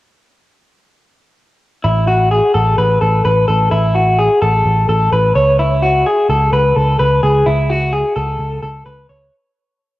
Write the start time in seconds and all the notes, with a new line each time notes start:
1.84 A1 E4
2.07 F#4
2.31 G#4
2.54 A1 A4
2.78 A1 B4
3.01 A1 A4
3.25 A1 B4
3.48 A1 A4
3.71 A1 E4
3.95 F#4
4.18 G#4
4.42 A1 A4
4.66 A1
4.89 A1 A4
5.12 A1 B4
5.35 C#2 C#5
5.59 E4
5.82 F#4
6.06 G#4
6.29 C#2 A4
6.52 C#2 B4
6.76 C#2 A4
6.99 C#2 B4
7.23 C#2 G#4
7.46 C#2 E4
7.70 F#4
7.93 G#4
8.16 C#2 A4
8.39 C#2
8.62 C#2 A4
8.86 C#2 B4
9.09 C#2 C#5